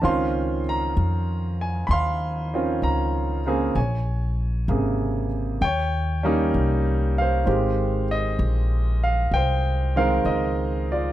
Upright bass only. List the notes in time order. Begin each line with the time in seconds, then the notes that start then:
0.03 C#2
0.97 F2
1.89 D#2
2.82 C#2
3.75 A#1
4.68 G#1
5.61 D#2
6.54 C2
7.47 G#1
8.39 A#1
9.31 C2
10.25 C#2